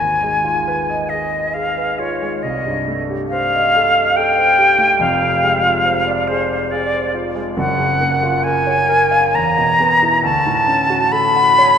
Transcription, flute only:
Already playing: G#5
1.09 D#5
1.54 F5
1.99 C#5
2.43 D#5
3.29 F5
4.17 G5
5.00 F5
6.28 C5
6.71 D5
7.57 F#5
8.44 G#5
9.35 A#5
10.24 A5
11.12 B5

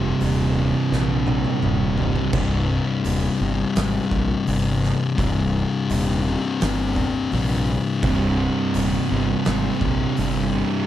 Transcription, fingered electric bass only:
Already playing: F1
0.21 D#1
0.92 A#1
1.63 D#1
2.33 C1
3.05 D#1
3.40 G1
3.76 G#1
4.12 A#1
4.48 G1
5.19 C1
5.90 D#1
6.62 G1
7.33 A#1
8.03 C1
8.75 D#1
9.11 G1
9.47 G#1
9.81 A#1
10.18 G1

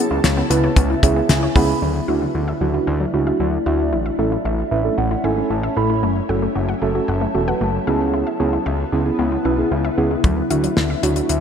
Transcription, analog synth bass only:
0.11 C#2
0.24 C#2
0.50 C#2
0.77 C#2
1.03 C#2
1.29 C#2
1.56 C#2
1.82 D2
2.08 D2
2.35 D2
2.61 D2
2.87 D2
3.14 C#2
3.40 D2
3.66 D2
3.92 A1
4.19 A1
4.45 A1
4.71 A1
4.98 A1
5.24 G#1
5.50 A1
5.77 A1
6.03 F#1
6.29 F#1
6.56 F#1
6.82 F#1
7.08 F#1
7.35 E1
7.61 F#1
7.87 C#2
8.40 C#2
8.66 C#2
8.92 C#2
9.19 C#2
9.45 B1
9.71 C#2
9.98 C#2
10.24 D2
10.50 D2
10.77 D2
11.03 D2
11.29 D2

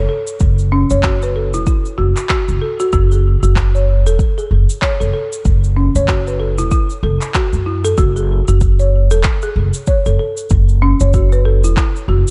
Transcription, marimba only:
0.09 A4
0.72 C#4
0.91 C#5
1.04 F#4
1.23 B4
1.36 A4
1.54 E4
1.67 E4
1.98 F#4
2.30 F#4
2.62 A4
2.80 F#4
2.93 F#4
3.12 G#4
3.43 F#4
3.75 C#5
4.07 A4
4.38 G#4
4.82 C#5
5.00 A4
5.14 A4
5.77 C#4
5.96 C#5
6.08 F#4
6.27 B4
6.40 A4
6.58 E4
6.72 E4
7.03 A4
7.34 F#4
7.66 E4
7.85 A4
7.98 F#4
8.16 G#4
8.48 F#4
8.79 C#5
9.11 A4
9.43 G#4
9.88 C#5
10.06 A4
10.19 A4
10.82 C#4
11.01 C#5
11.14 F#4
11.32 B4
11.45 A4
11.64 E4
11.77 E4
12.09 F#4

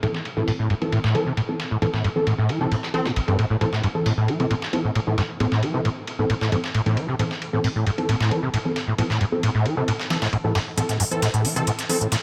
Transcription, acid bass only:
0.03 A2
0.37 A2
0.48 A2
0.59 A2
0.70 G2
0.92 A2
1.04 A2
1.15 E3
1.26 C3
1.37 A2
1.71 A2
1.82 A2
1.94 A2
2.04 G2
2.27 A2
2.38 A2
2.49 E3
2.61 C3
2.72 A2
2.94 C4
3.06 A2
3.16 A1
3.28 G2
3.39 A2
3.50 A2
3.61 A2
3.73 A2
3.84 G2
4.06 A2
4.17 A2
4.28 E3
4.40 C3
4.51 A2
4.85 A2
4.95 A2
5.07 A2
5.18 G2
5.40 A2
5.52 A2
5.63 E3
5.74 C3
5.85 A2
6.19 A2
6.30 A2
6.41 A2
6.52 G2
6.75 A2
6.86 A2
6.97 E3
7.08 C3
7.19 A2
7.53 A2
7.64 A2
7.76 A2
7.86 G2
8.09 A2
8.20 A2
8.31 E3
8.43 C3
8.54 A2
8.88 A2
8.98 A2
9.10 A2
9.21 G2
9.43 A2
9.55 A2
9.66 E3
9.77 C3
9.88 A2
10.22 A2
10.33 A2
10.44 A2
10.55 G2
10.78 A2
10.89 A2
11.00 G2
11.22 A2
11.34 A2
11.45 E3
11.56 C3
11.67 A2
12.01 A2
12.12 A2

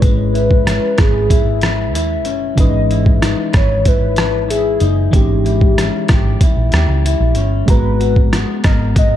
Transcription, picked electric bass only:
0.02 G#1
0.99 G#1
1.93 D#2
2.25 F#1
2.58 G#1
3.54 G#1
4.81 F#1
5.13 G#1
6.10 G#1
6.56 A#1
6.72 D#2
6.88 C#2
7.20 A#1
7.36 G1
7.68 G#1
8.65 G#1

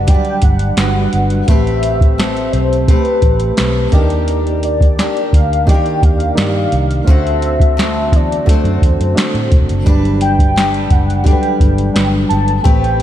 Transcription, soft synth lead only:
0.08 G5
0.43 F#5
1.48 E5
2.52 C5
2.88 B4
4.64 D5
5.34 F5
5.70 G5
6.04 F5
7.10 E5
8.16 D5
8.50 C5
10.21 G5
10.91 F#5
11.25 G5
11.94 G5
12.29 A5
12.63 G5

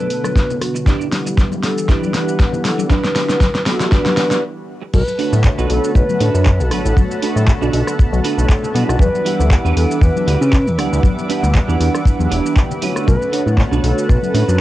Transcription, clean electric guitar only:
Already playing: B3 D4 A4
0.75 muted clean electric guitar stroke
0.86 D4 E4 G4
1.25 muted clean electric guitar stroke
1.37 muted clean electric guitar stroke
1.63 muted clean electric guitar stroke
1.88 D4 E4 G4
2.78 muted clean electric guitar stroke
2.90 D4 E4 G4
3.29 muted clean electric guitar stroke
3.41 muted clean electric guitar stroke
3.66 muted clean electric guitar stroke
3.91 D4 E4 G4
4.81 muted clean electric guitar stroke
5.18 D4 F#4 A4 B4
5.58 D4 F#4 A4 B4
6.20 D4 F#4 A4 B4
6.71 D4 F#4 A4 B4
7.22 D4 F#4 A4 B4
7.61 D4 F#4 A4 D5
8.24 D4 F#4 A4 B4
8.74 D4 F#4 A4 B4
9.25 D4 E4 G4 B4
9.65 D4 E4 G4 B4
10.27 D4 E4 G4 B4
10.78 D4 E4 G4 D5
11.29 D4 E4 G4 B4
11.55 muted clean electric guitar stroke
11.68 D4 E4 G4 D5
12.30 D4 E4 G4 D5
12.81 D4 E4 G4 B4
13.32 D4 F#4 A4 B4
13.71 D4 F#4 A4 B4
14.34 D4 F#4 A4 B4

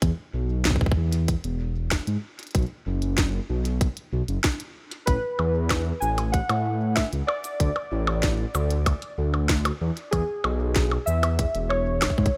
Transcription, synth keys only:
5.06 B4
6.00 G#5
6.32 F#5
6.95 E5
7.27 D5
10.11 G#4
11.06 E5
11.69 C#5

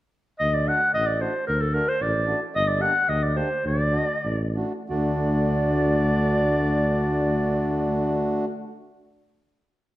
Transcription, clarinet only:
0.39 D#5
0.55 D5
0.68 F#5
0.94 D#5
1.07 D5
1.21 C5
1.47 A#4
1.61 A4
1.74 A#4
1.88 C5
2.02 D5
2.55 D#5
2.68 D5
2.81 F#5
3.09 D#5
3.23 D5
3.37 C5
3.67 D5
4.89 D5

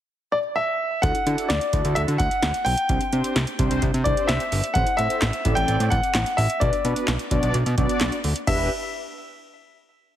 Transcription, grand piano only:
0.32 D5
0.56 E5
1.02 F#5
1.49 D5
1.95 E5
2.18 F#5
2.65 G5
4.04 D5
4.27 E5
4.74 F#5
4.97 E5
5.55 G5
5.90 F#5
6.37 E5
6.60 D5
8.47 E5

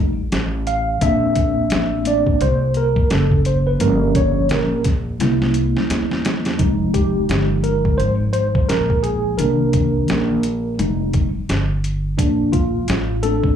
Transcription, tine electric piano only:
Already playing: G3 A3 D#4
0.67 F5
1.02 A#3 C4 D4 E5
2.06 A3 C4 D4 D5
2.42 C5
2.77 A#4
3.12 A4
3.46 C5
3.67 B4
3.79 F3 A#3 C#4 A#4
4.16 C#5
4.51 A#4
5.19 G3 A#3 E4
6.59 F3 G#3 D#4
6.94 G4
7.64 A#4
7.98 C5
8.33 C5
8.69 A#4
9.03 G#4
9.38 D#3 A#3 D4 A#4
10.78 G3 A3 D#4
12.18 D4
12.52 F4
13.23 A3 C4 D4 A4

